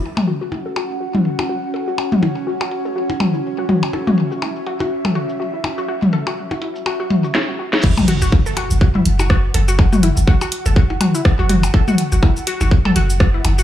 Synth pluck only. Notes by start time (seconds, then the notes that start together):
0.03 E4
0.27 F#4
0.41 F#4
0.66 A4
0.76 F#4
1.01 F#4
1.14 E4
1.39 F#4
1.49 F#4
1.74 A4
1.88 F#4
2.12 F#4
2.23 E4
2.47 F#4
2.61 F#4
2.85 A4
2.96 F#4
3.20 F#4
3.34 E4
3.58 F#4
3.69 F#4
3.93 A4
4.07 F#4
4.32 F#4
4.42 E4
4.67 F#4
4.80 F#4
5.05 A4
5.15 F#4
5.40 F#4
5.54 E4
5.78 F#4
5.88 F#4
6.13 A4
6.27 F#4
6.51 F#4
6.62 E4
6.86 F#4
7.00 F#4
7.24 F#4
7.35 C#4
7.49 F#4
7.59 F#4
7.84 E4
8.08 F#4
8.22 F#4
8.46 A4
8.57 F#4
8.81 F#4
8.95 E4
9.19 F#4
9.30 F#4
9.54 A4
9.68 F#4
9.93 F#4
10.03 E4
10.27 F#4
10.41 F#4
10.66 A4
10.76 F#4
11.01 F#4
11.15 E4
11.39 F#4
11.49 F#4
11.74 A4
11.88 F#4
12.12 F#4
12.23 E4
12.47 F#4
12.61 F#4
12.85 A4
12.96 F#4
13.20 F#4
13.34 E4
13.58 F#4